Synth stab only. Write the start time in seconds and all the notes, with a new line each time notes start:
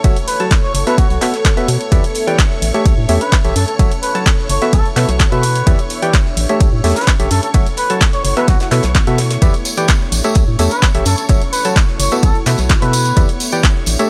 0.04 F#3 F#4 A4 C#5 E5
0.40 F#3 F#4 A4 C#5 A5
0.87 B3 F#4 A4 B4 E5
1.21 B3 F#4 A4 B4 E5
1.57 B3 F#4 A4 B4 E5
1.92 E3 G4 B4 D5 E5
2.27 E3 G4 B4 D5 G5
2.74 A3 G4 A4 C#5 E5
3.09 A3 G4 A4 C#5 E5
3.45 G4 A4 C#5 E5
3.79 F#3 F#4 A4 C#5 E5
4.15 F#3 F#4 A4 C#5 A5
4.62 B3 F#4 A4 B4 E5
4.96 B3 F#4 A4 B4 E5
5.32 B3 F#4 A4 B4 E5
5.67 E3 G4 B4 D5 E5
6.02 E3 G4 B4 D5 G5
6.49 A3 G4 A4 C#5 E5
6.84 A3 G4 A4 C#5 E5
7.20 G4 A4 C#5 E5
7.54 F#3 F#4 A4 C#5 E5
7.90 F#3 F#4 A4 C#5 A5
8.37 B3 F#4 A4 B4 E5
8.71 B3 F#4 A4 B4 E5
9.07 B3 F#4 A4 B4 E5
9.42 E3 G4 B4 D5 E5
9.77 E3 G4 B4 D5 G5
10.24 A3 G4 A4 C#5 E5
10.59 A3 G4 A4 C#5 E5
10.95 G4 A4 C#5 E5
11.29 F#3 F#4 A4 C#5 E5
11.65 F#3 F#4 A4 C#5 A5
12.12 B3 F#4 A4 B4 E5
12.46 B3 F#4 A4 B4 E5
12.82 B3 F#4 A4 B4 E5
13.17 E3 G4 B4 D5 E5
13.52 E3 G4 B4 D5 G5
13.99 A3 G4 A4 C#5 E5